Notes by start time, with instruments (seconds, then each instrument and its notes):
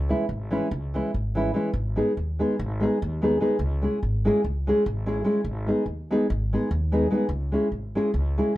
Already playing: upright bass C#2
0.09 nylon-string guitar E3 G#3 C#4 E4
0.29 upright bass G#1
0.51 nylon-string guitar E3 G#3 C#4 E4
0.71 upright bass C#2
0.94 nylon-string guitar E3 G#3 C#4 E4
1.14 upright bass G#1
1.35 nylon-string guitar E3 G#3 C#4 E4
1.54 nylon-string guitar E3 G#3 C#4 E4
1.74 upright bass G#1
1.96 nylon-string guitar G#3 B3 D#4 G#4
2.17 upright bass D#2
2.39 nylon-string guitar G#3 B3 D#4 G#4
2.59 upright bass G#1
2.80 nylon-string guitar G#3 B3 D#4 G#4
3.02 upright bass D#2
3.22 nylon-string guitar G#3 B3 D#4 G#4
3.40 nylon-string guitar G#3 B3 D#4 G#4
3.59 upright bass C#2
3.82 nylon-string guitar G#3 C#4 E4 G#4
4.03 upright bass G#1
4.25 nylon-string guitar G#3 C#4 E4 G#4
4.44 upright bass C#2
4.67 nylon-string guitar G#3 C#4 E4 G#4
4.86 upright bass G#1
5.06 nylon-string guitar G#3 C#4 E4 G#4
5.24 nylon-string guitar G#3 C#4 E4 G#4
5.45 upright bass G#1
5.67 nylon-string guitar G#3 B3 D#4 G#4
5.86 upright bass D#2
6.11 nylon-string guitar G#3 B3 D#4 G#4
6.30 upright bass G#1
6.53 nylon-string guitar G#3 B3 D#4 G#4
6.71 upright bass D#2
6.92 nylon-string guitar G#3 B3 D#4 G#4
7.11 nylon-string guitar G#3 B3 D#4 G#4
7.29 upright bass C#2
7.52 nylon-string guitar G#3 C#4 E4 G#4
7.72 upright bass G#1
7.95 nylon-string guitar G#3 C#4 E4 G#4
8.14 upright bass C#2
8.38 nylon-string guitar G#3 C#4 E4 G#4